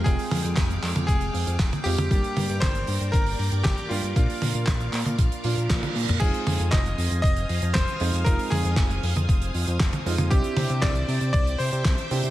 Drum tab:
CC |----------------|----------------|----------------|x---------------|
HH |xooxxxoxxxoxxxox|xxoxxxoxxooxxxox|xooxxxoxxxoxxxox|xxoxxxoxxxoxxxox|
CP |----x-x-----x---|----x-------x---|----x-x-----x---|----x-------x---|
SD |----o-------o---|----o-------o---|----o-------o---|----o-------o---|
T1 |--o----o-----o-o|--o-------------|--o----o----oo--|--o-------------|
T2 |----------------|----------------|---------------o|----------------|
BD |o---o---o---o---|o---o---o---o---|o---o---o---o---|o---o---o---o---|

CC |----------------|----------------|
HH |xooxxxoxxxoxxxox|xxoxxxoxxxoxxxox|
CP |----x-------x---|----x-------x---|
SD |----o-------o---|----o-------o---|
T1 |--o----o-----o-o|--o-------------|
T2 |----------------|----------------|
BD |o---o---o---o---|o---o---o---o---|